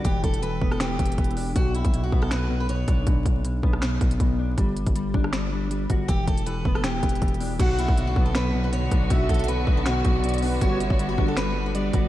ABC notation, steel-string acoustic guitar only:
X:1
M:4/4
L:1/16
Q:1/4=159
K:Bm
V:1 name="Steel-string acoustic guitar"
G2 A2 B3 A G8 | F2 E3 F2 A B3 B c4 | z16 | z16 |
G2 A2 B3 A G8 | F2 E3 F2 A B3 B c4 | F2 A2 B3 A F8 | F2 E3 F2 A B3 B d4 |]